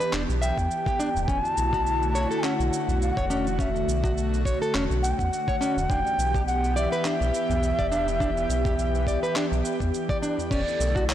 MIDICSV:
0, 0, Header, 1, 7, 480
1, 0, Start_track
1, 0, Tempo, 576923
1, 1067, Time_signature, 4, 2, 24, 8
1, 9271, End_track
2, 0, Start_track
2, 0, Title_t, "Bansuri"
2, 0, Program_c, 0, 73
2, 349, Note_on_c, 0, 79, 100
2, 1072, Note_on_c, 0, 80, 112
2, 1085, Note_off_c, 0, 79, 0
2, 1222, Note_off_c, 0, 80, 0
2, 1222, Note_on_c, 0, 81, 112
2, 2034, Note_on_c, 0, 78, 94
2, 2046, Note_off_c, 0, 81, 0
2, 2508, Note_off_c, 0, 78, 0
2, 2513, Note_on_c, 0, 78, 91
2, 2997, Note_on_c, 0, 76, 76
2, 3009, Note_off_c, 0, 78, 0
2, 3472, Note_off_c, 0, 76, 0
2, 4182, Note_on_c, 0, 78, 104
2, 4248, Note_on_c, 0, 79, 83
2, 4260, Note_off_c, 0, 78, 0
2, 4313, Note_on_c, 0, 78, 112
2, 4325, Note_off_c, 0, 79, 0
2, 4907, Note_on_c, 0, 79, 109
2, 4919, Note_off_c, 0, 78, 0
2, 5379, Note_off_c, 0, 79, 0
2, 5384, Note_on_c, 0, 78, 100
2, 5609, Note_off_c, 0, 78, 0
2, 5633, Note_on_c, 0, 76, 110
2, 8237, Note_off_c, 0, 76, 0
2, 8743, Note_on_c, 0, 74, 88
2, 9192, Note_off_c, 0, 74, 0
2, 9227, Note_on_c, 0, 73, 94
2, 9271, Note_off_c, 0, 73, 0
2, 9271, End_track
3, 0, Start_track
3, 0, Title_t, "Nylon-string guitar"
3, 0, Program_c, 1, 24
3, 0, Note_on_c, 1, 71, 74
3, 102, Note_off_c, 1, 71, 0
3, 107, Note_on_c, 1, 62, 94
3, 183, Note_off_c, 1, 62, 0
3, 346, Note_on_c, 1, 76, 74
3, 472, Note_off_c, 1, 76, 0
3, 722, Note_on_c, 1, 67, 90
3, 823, Note_off_c, 1, 67, 0
3, 828, Note_on_c, 1, 62, 89
3, 903, Note_off_c, 1, 62, 0
3, 1068, Note_on_c, 1, 61, 89
3, 1143, Note_off_c, 1, 61, 0
3, 1442, Note_on_c, 1, 66, 73
3, 1502, Note_off_c, 1, 66, 0
3, 1789, Note_on_c, 1, 73, 70
3, 1914, Note_off_c, 1, 73, 0
3, 1919, Note_on_c, 1, 69, 77
3, 2021, Note_off_c, 1, 69, 0
3, 2027, Note_on_c, 1, 61, 94
3, 2102, Note_off_c, 1, 61, 0
3, 2640, Note_on_c, 1, 73, 70
3, 2701, Note_off_c, 1, 73, 0
3, 2747, Note_on_c, 1, 61, 90
3, 2873, Note_off_c, 1, 61, 0
3, 2986, Note_on_c, 1, 61, 89
3, 3062, Note_off_c, 1, 61, 0
3, 3361, Note_on_c, 1, 66, 74
3, 3421, Note_off_c, 1, 66, 0
3, 3707, Note_on_c, 1, 73, 67
3, 3833, Note_off_c, 1, 73, 0
3, 3841, Note_on_c, 1, 69, 75
3, 3942, Note_off_c, 1, 69, 0
3, 3947, Note_on_c, 1, 61, 99
3, 4023, Note_off_c, 1, 61, 0
3, 4559, Note_on_c, 1, 73, 67
3, 4621, Note_off_c, 1, 73, 0
3, 4666, Note_on_c, 1, 61, 92
3, 4793, Note_off_c, 1, 61, 0
3, 4905, Note_on_c, 1, 62, 95
3, 4982, Note_off_c, 1, 62, 0
3, 5277, Note_on_c, 1, 67, 75
3, 5339, Note_off_c, 1, 67, 0
3, 5625, Note_on_c, 1, 74, 67
3, 5752, Note_off_c, 1, 74, 0
3, 5759, Note_on_c, 1, 71, 77
3, 5861, Note_off_c, 1, 71, 0
3, 5866, Note_on_c, 1, 62, 101
3, 5942, Note_off_c, 1, 62, 0
3, 6479, Note_on_c, 1, 74, 77
3, 6540, Note_off_c, 1, 74, 0
3, 6586, Note_on_c, 1, 62, 88
3, 6713, Note_off_c, 1, 62, 0
3, 6826, Note_on_c, 1, 62, 85
3, 6902, Note_off_c, 1, 62, 0
3, 7203, Note_on_c, 1, 67, 71
3, 7262, Note_off_c, 1, 67, 0
3, 7550, Note_on_c, 1, 74, 64
3, 7675, Note_off_c, 1, 74, 0
3, 7679, Note_on_c, 1, 71, 77
3, 7781, Note_off_c, 1, 71, 0
3, 7787, Note_on_c, 1, 62, 96
3, 7863, Note_off_c, 1, 62, 0
3, 8399, Note_on_c, 1, 74, 70
3, 8460, Note_off_c, 1, 74, 0
3, 8507, Note_on_c, 1, 62, 89
3, 8633, Note_off_c, 1, 62, 0
3, 8744, Note_on_c, 1, 61, 91
3, 8821, Note_off_c, 1, 61, 0
3, 9118, Note_on_c, 1, 66, 76
3, 9180, Note_off_c, 1, 66, 0
3, 9271, End_track
4, 0, Start_track
4, 0, Title_t, "Analog synth pad"
4, 0, Program_c, 2, 89
4, 0, Note_on_c, 2, 52, 82
4, 0, Note_on_c, 2, 59, 77
4, 0, Note_on_c, 2, 67, 84
4, 0, Note_on_c, 2, 81, 87
4, 1030, Note_off_c, 2, 59, 0
4, 1031, Note_off_c, 2, 52, 0
4, 1031, Note_off_c, 2, 67, 0
4, 1032, Note_off_c, 2, 81, 0
4, 1059, Note_on_c, 2, 57, 72
4, 1060, Note_on_c, 2, 50, 81
4, 1061, Note_on_c, 2, 64, 75
4, 1062, Note_on_c, 2, 66, 93
4, 2965, Note_off_c, 2, 64, 0
4, 4870, Note_off_c, 2, 50, 0
4, 4870, Note_off_c, 2, 57, 0
4, 4871, Note_off_c, 2, 66, 0
4, 4908, Note_on_c, 2, 52, 82
4, 4908, Note_on_c, 2, 79, 71
4, 4909, Note_on_c, 2, 59, 74
4, 4909, Note_on_c, 2, 67, 93
4, 8714, Note_off_c, 2, 52, 0
4, 8714, Note_off_c, 2, 79, 0
4, 8715, Note_off_c, 2, 59, 0
4, 8715, Note_off_c, 2, 67, 0
4, 8737, Note_on_c, 2, 64, 76
4, 8740, Note_on_c, 2, 69, 88
4, 8741, Note_on_c, 2, 57, 72
4, 8743, Note_on_c, 2, 50, 87
4, 9271, Note_off_c, 2, 50, 0
4, 9271, Note_off_c, 2, 57, 0
4, 9271, Note_off_c, 2, 64, 0
4, 9271, Note_off_c, 2, 69, 0
4, 9271, End_track
5, 0, Start_track
5, 0, Title_t, "Analog synth bass"
5, 0, Program_c, 3, 38
5, 107, Note_on_c, 3, 28, 84
5, 217, Note_off_c, 3, 28, 0
5, 241, Note_on_c, 3, 35, 98
5, 434, Note_off_c, 3, 35, 0
5, 480, Note_on_c, 3, 40, 83
5, 568, Note_off_c, 3, 40, 0
5, 964, Note_on_c, 3, 26, 85
5, 1050, Note_off_c, 3, 26, 0
5, 1066, Note_on_c, 3, 28, 94
5, 1176, Note_off_c, 3, 28, 0
5, 1308, Note_on_c, 3, 35, 79
5, 1883, Note_off_c, 3, 35, 0
5, 2160, Note_on_c, 3, 35, 99
5, 2248, Note_off_c, 3, 35, 0
5, 2396, Note_on_c, 3, 35, 88
5, 2591, Note_off_c, 3, 35, 0
5, 2639, Note_on_c, 3, 28, 100
5, 3196, Note_off_c, 3, 28, 0
5, 3223, Note_on_c, 3, 35, 79
5, 3801, Note_off_c, 3, 35, 0
5, 3946, Note_on_c, 3, 28, 83
5, 4056, Note_off_c, 3, 28, 0
5, 4078, Note_on_c, 3, 35, 94
5, 4272, Note_off_c, 3, 35, 0
5, 4319, Note_on_c, 3, 40, 84
5, 4408, Note_off_c, 3, 40, 0
5, 4797, Note_on_c, 3, 26, 83
5, 4887, Note_off_c, 3, 26, 0
5, 4904, Note_on_c, 3, 28, 105
5, 5015, Note_off_c, 3, 28, 0
5, 5142, Note_on_c, 3, 35, 83
5, 5720, Note_off_c, 3, 35, 0
5, 5997, Note_on_c, 3, 35, 103
5, 6087, Note_off_c, 3, 35, 0
5, 6236, Note_on_c, 3, 35, 93
5, 6432, Note_off_c, 3, 35, 0
5, 6480, Note_on_c, 3, 28, 95
5, 7037, Note_off_c, 3, 28, 0
5, 7064, Note_on_c, 3, 35, 86
5, 7641, Note_off_c, 3, 35, 0
5, 7917, Note_on_c, 3, 35, 82
5, 8007, Note_off_c, 3, 35, 0
5, 8157, Note_on_c, 3, 40, 93
5, 8247, Note_off_c, 3, 40, 0
5, 8743, Note_on_c, 3, 28, 100
5, 8855, Note_off_c, 3, 28, 0
5, 8984, Note_on_c, 3, 35, 85
5, 9271, Note_off_c, 3, 35, 0
5, 9271, End_track
6, 0, Start_track
6, 0, Title_t, "Tabla"
6, 826, Note_on_c, 9, 60, 80
6, 909, Note_off_c, 9, 60, 0
6, 954, Note_on_c, 9, 64, 78
6, 1037, Note_off_c, 9, 64, 0
6, 1203, Note_on_c, 9, 63, 59
6, 1286, Note_off_c, 9, 63, 0
6, 1436, Note_on_c, 9, 60, 54
6, 1519, Note_off_c, 9, 60, 0
6, 1921, Note_on_c, 9, 63, 36
6, 2005, Note_off_c, 9, 63, 0
6, 2394, Note_on_c, 9, 64, 89
6, 2395, Note_on_c, 9, 63, 46
6, 2477, Note_off_c, 9, 64, 0
6, 2478, Note_off_c, 9, 63, 0
6, 2633, Note_on_c, 9, 63, 61
6, 2641, Note_on_c, 9, 64, 71
6, 2716, Note_off_c, 9, 63, 0
6, 2725, Note_off_c, 9, 64, 0
6, 2746, Note_on_c, 9, 60, 73
6, 2829, Note_off_c, 9, 60, 0
6, 2877, Note_on_c, 9, 64, 93
6, 2960, Note_off_c, 9, 64, 0
6, 3117, Note_on_c, 9, 63, 60
6, 3200, Note_off_c, 9, 63, 0
6, 3359, Note_on_c, 9, 60, 57
6, 3442, Note_off_c, 9, 60, 0
6, 4664, Note_on_c, 9, 60, 70
6, 4747, Note_off_c, 9, 60, 0
6, 4795, Note_on_c, 9, 64, 94
6, 4878, Note_off_c, 9, 64, 0
6, 5040, Note_on_c, 9, 63, 72
6, 5123, Note_off_c, 9, 63, 0
6, 5285, Note_on_c, 9, 60, 64
6, 5368, Note_off_c, 9, 60, 0
6, 5756, Note_on_c, 9, 63, 37
6, 5839, Note_off_c, 9, 63, 0
6, 6239, Note_on_c, 9, 63, 57
6, 6239, Note_on_c, 9, 64, 94
6, 6322, Note_off_c, 9, 63, 0
6, 6322, Note_off_c, 9, 64, 0
6, 6484, Note_on_c, 9, 64, 78
6, 6486, Note_on_c, 9, 63, 62
6, 6567, Note_off_c, 9, 64, 0
6, 6569, Note_off_c, 9, 63, 0
6, 6584, Note_on_c, 9, 60, 84
6, 6667, Note_off_c, 9, 60, 0
6, 6718, Note_on_c, 9, 64, 80
6, 6801, Note_off_c, 9, 64, 0
6, 6955, Note_on_c, 9, 63, 65
6, 7038, Note_off_c, 9, 63, 0
6, 7068, Note_on_c, 9, 63, 40
6, 7152, Note_off_c, 9, 63, 0
6, 7191, Note_on_c, 9, 60, 57
6, 7195, Note_on_c, 9, 64, 69
6, 7274, Note_off_c, 9, 60, 0
6, 7278, Note_off_c, 9, 64, 0
6, 7674, Note_on_c, 9, 60, 58
6, 7677, Note_on_c, 9, 63, 41
6, 7758, Note_off_c, 9, 60, 0
6, 7761, Note_off_c, 9, 63, 0
6, 7914, Note_on_c, 9, 60, 53
6, 7997, Note_off_c, 9, 60, 0
6, 8502, Note_on_c, 9, 60, 72
6, 8586, Note_off_c, 9, 60, 0
6, 8637, Note_on_c, 9, 64, 78
6, 8721, Note_off_c, 9, 64, 0
6, 8981, Note_on_c, 9, 63, 60
6, 9064, Note_off_c, 9, 63, 0
6, 9110, Note_on_c, 9, 60, 63
6, 9193, Note_off_c, 9, 60, 0
6, 9271, End_track
7, 0, Start_track
7, 0, Title_t, "Drums"
7, 6, Note_on_c, 9, 69, 32
7, 90, Note_off_c, 9, 69, 0
7, 108, Note_on_c, 9, 39, 77
7, 113, Note_on_c, 9, 69, 41
7, 191, Note_off_c, 9, 39, 0
7, 197, Note_off_c, 9, 69, 0
7, 248, Note_on_c, 9, 69, 22
7, 331, Note_off_c, 9, 69, 0
7, 354, Note_on_c, 9, 69, 76
7, 437, Note_off_c, 9, 69, 0
7, 479, Note_on_c, 9, 36, 57
7, 487, Note_on_c, 9, 69, 31
7, 563, Note_off_c, 9, 36, 0
7, 571, Note_off_c, 9, 69, 0
7, 591, Note_on_c, 9, 69, 45
7, 674, Note_off_c, 9, 69, 0
7, 719, Note_on_c, 9, 36, 100
7, 727, Note_on_c, 9, 69, 21
7, 802, Note_off_c, 9, 36, 0
7, 810, Note_off_c, 9, 69, 0
7, 833, Note_on_c, 9, 69, 76
7, 916, Note_off_c, 9, 69, 0
7, 968, Note_on_c, 9, 69, 32
7, 1052, Note_off_c, 9, 69, 0
7, 1065, Note_on_c, 9, 36, 111
7, 1074, Note_on_c, 9, 69, 39
7, 1148, Note_off_c, 9, 36, 0
7, 1157, Note_off_c, 9, 69, 0
7, 1206, Note_on_c, 9, 69, 21
7, 1290, Note_off_c, 9, 69, 0
7, 1310, Note_on_c, 9, 69, 77
7, 1393, Note_off_c, 9, 69, 0
7, 1438, Note_on_c, 9, 36, 100
7, 1447, Note_on_c, 9, 69, 33
7, 1522, Note_off_c, 9, 36, 0
7, 1530, Note_off_c, 9, 69, 0
7, 1552, Note_on_c, 9, 69, 41
7, 1635, Note_off_c, 9, 69, 0
7, 1685, Note_on_c, 9, 69, 22
7, 1768, Note_off_c, 9, 69, 0
7, 1791, Note_on_c, 9, 69, 71
7, 1875, Note_off_c, 9, 69, 0
7, 1925, Note_on_c, 9, 69, 30
7, 2008, Note_off_c, 9, 69, 0
7, 2028, Note_on_c, 9, 39, 71
7, 2033, Note_on_c, 9, 69, 45
7, 2111, Note_off_c, 9, 39, 0
7, 2116, Note_off_c, 9, 69, 0
7, 2166, Note_on_c, 9, 69, 23
7, 2249, Note_off_c, 9, 69, 0
7, 2273, Note_on_c, 9, 69, 74
7, 2356, Note_off_c, 9, 69, 0
7, 2407, Note_on_c, 9, 69, 31
7, 2490, Note_off_c, 9, 69, 0
7, 2513, Note_on_c, 9, 69, 44
7, 2596, Note_off_c, 9, 69, 0
7, 2638, Note_on_c, 9, 36, 96
7, 2647, Note_on_c, 9, 69, 22
7, 2722, Note_off_c, 9, 36, 0
7, 2730, Note_off_c, 9, 69, 0
7, 2750, Note_on_c, 9, 69, 76
7, 2834, Note_off_c, 9, 69, 0
7, 2886, Note_on_c, 9, 69, 30
7, 2970, Note_off_c, 9, 69, 0
7, 2986, Note_on_c, 9, 36, 102
7, 2994, Note_on_c, 9, 69, 38
7, 3069, Note_off_c, 9, 36, 0
7, 3078, Note_off_c, 9, 69, 0
7, 3128, Note_on_c, 9, 69, 20
7, 3211, Note_off_c, 9, 69, 0
7, 3236, Note_on_c, 9, 69, 71
7, 3319, Note_off_c, 9, 69, 0
7, 3359, Note_on_c, 9, 36, 98
7, 3369, Note_on_c, 9, 69, 34
7, 3442, Note_off_c, 9, 36, 0
7, 3452, Note_off_c, 9, 69, 0
7, 3474, Note_on_c, 9, 69, 42
7, 3557, Note_off_c, 9, 69, 0
7, 3609, Note_on_c, 9, 69, 21
7, 3692, Note_off_c, 9, 69, 0
7, 3706, Note_on_c, 9, 36, 58
7, 3716, Note_on_c, 9, 69, 69
7, 3789, Note_off_c, 9, 36, 0
7, 3799, Note_off_c, 9, 69, 0
7, 3849, Note_on_c, 9, 69, 31
7, 3932, Note_off_c, 9, 69, 0
7, 3948, Note_on_c, 9, 39, 73
7, 3953, Note_on_c, 9, 69, 44
7, 4031, Note_off_c, 9, 39, 0
7, 4036, Note_off_c, 9, 69, 0
7, 4087, Note_on_c, 9, 69, 21
7, 4170, Note_off_c, 9, 69, 0
7, 4195, Note_on_c, 9, 69, 67
7, 4278, Note_off_c, 9, 69, 0
7, 4319, Note_on_c, 9, 36, 57
7, 4329, Note_on_c, 9, 69, 30
7, 4402, Note_off_c, 9, 36, 0
7, 4412, Note_off_c, 9, 69, 0
7, 4436, Note_on_c, 9, 69, 42
7, 4520, Note_off_c, 9, 69, 0
7, 4559, Note_on_c, 9, 36, 101
7, 4568, Note_on_c, 9, 69, 21
7, 4642, Note_off_c, 9, 36, 0
7, 4651, Note_off_c, 9, 69, 0
7, 4676, Note_on_c, 9, 69, 69
7, 4759, Note_off_c, 9, 69, 0
7, 4809, Note_on_c, 9, 69, 29
7, 4892, Note_off_c, 9, 69, 0
7, 4906, Note_on_c, 9, 36, 106
7, 4916, Note_on_c, 9, 69, 36
7, 4989, Note_off_c, 9, 36, 0
7, 4999, Note_off_c, 9, 69, 0
7, 5046, Note_on_c, 9, 69, 18
7, 5130, Note_off_c, 9, 69, 0
7, 5153, Note_on_c, 9, 69, 71
7, 5236, Note_off_c, 9, 69, 0
7, 5279, Note_on_c, 9, 36, 92
7, 5284, Note_on_c, 9, 69, 33
7, 5363, Note_off_c, 9, 36, 0
7, 5367, Note_off_c, 9, 69, 0
7, 5391, Note_on_c, 9, 69, 41
7, 5475, Note_off_c, 9, 69, 0
7, 5525, Note_on_c, 9, 69, 22
7, 5608, Note_off_c, 9, 69, 0
7, 5632, Note_on_c, 9, 69, 64
7, 5716, Note_off_c, 9, 69, 0
7, 5764, Note_on_c, 9, 69, 30
7, 5847, Note_off_c, 9, 69, 0
7, 5863, Note_on_c, 9, 39, 70
7, 5868, Note_on_c, 9, 69, 41
7, 5946, Note_off_c, 9, 39, 0
7, 5952, Note_off_c, 9, 69, 0
7, 6004, Note_on_c, 9, 69, 21
7, 6088, Note_off_c, 9, 69, 0
7, 6109, Note_on_c, 9, 69, 75
7, 6192, Note_off_c, 9, 69, 0
7, 6245, Note_on_c, 9, 69, 29
7, 6328, Note_off_c, 9, 69, 0
7, 6348, Note_on_c, 9, 69, 42
7, 6432, Note_off_c, 9, 69, 0
7, 6479, Note_on_c, 9, 36, 94
7, 6482, Note_on_c, 9, 69, 20
7, 6562, Note_off_c, 9, 36, 0
7, 6565, Note_off_c, 9, 69, 0
7, 6589, Note_on_c, 9, 69, 67
7, 6672, Note_off_c, 9, 69, 0
7, 6722, Note_on_c, 9, 69, 30
7, 6805, Note_off_c, 9, 69, 0
7, 6826, Note_on_c, 9, 36, 108
7, 6833, Note_on_c, 9, 69, 39
7, 6909, Note_off_c, 9, 36, 0
7, 6916, Note_off_c, 9, 69, 0
7, 6966, Note_on_c, 9, 69, 21
7, 7049, Note_off_c, 9, 69, 0
7, 7073, Note_on_c, 9, 69, 66
7, 7156, Note_off_c, 9, 69, 0
7, 7198, Note_on_c, 9, 36, 97
7, 7206, Note_on_c, 9, 69, 31
7, 7281, Note_off_c, 9, 36, 0
7, 7289, Note_off_c, 9, 69, 0
7, 7313, Note_on_c, 9, 69, 41
7, 7396, Note_off_c, 9, 69, 0
7, 7445, Note_on_c, 9, 69, 21
7, 7528, Note_off_c, 9, 69, 0
7, 7544, Note_on_c, 9, 36, 60
7, 7553, Note_on_c, 9, 69, 65
7, 7627, Note_off_c, 9, 36, 0
7, 7636, Note_off_c, 9, 69, 0
7, 7685, Note_on_c, 9, 69, 30
7, 7768, Note_off_c, 9, 69, 0
7, 7785, Note_on_c, 9, 39, 74
7, 7790, Note_on_c, 9, 69, 40
7, 7868, Note_off_c, 9, 39, 0
7, 7873, Note_off_c, 9, 69, 0
7, 7925, Note_on_c, 9, 69, 22
7, 8008, Note_off_c, 9, 69, 0
7, 8030, Note_on_c, 9, 69, 72
7, 8113, Note_off_c, 9, 69, 0
7, 8157, Note_on_c, 9, 36, 57
7, 8164, Note_on_c, 9, 69, 29
7, 8240, Note_off_c, 9, 36, 0
7, 8248, Note_off_c, 9, 69, 0
7, 8272, Note_on_c, 9, 69, 43
7, 8355, Note_off_c, 9, 69, 0
7, 8397, Note_on_c, 9, 36, 99
7, 8407, Note_on_c, 9, 69, 21
7, 8480, Note_off_c, 9, 36, 0
7, 8490, Note_off_c, 9, 69, 0
7, 8512, Note_on_c, 9, 69, 69
7, 8595, Note_off_c, 9, 69, 0
7, 8648, Note_on_c, 9, 69, 30
7, 8731, Note_off_c, 9, 69, 0
7, 8744, Note_on_c, 9, 36, 111
7, 8748, Note_on_c, 9, 49, 96
7, 8753, Note_on_c, 9, 69, 42
7, 8827, Note_off_c, 9, 36, 0
7, 8831, Note_off_c, 9, 49, 0
7, 8836, Note_off_c, 9, 69, 0
7, 8885, Note_on_c, 9, 69, 22
7, 8968, Note_off_c, 9, 69, 0
7, 8991, Note_on_c, 9, 69, 72
7, 9074, Note_off_c, 9, 69, 0
7, 9117, Note_on_c, 9, 36, 99
7, 9126, Note_on_c, 9, 69, 35
7, 9200, Note_off_c, 9, 36, 0
7, 9210, Note_off_c, 9, 69, 0
7, 9231, Note_on_c, 9, 39, 103
7, 9236, Note_on_c, 9, 69, 47
7, 9271, Note_off_c, 9, 39, 0
7, 9271, Note_off_c, 9, 69, 0
7, 9271, End_track
0, 0, End_of_file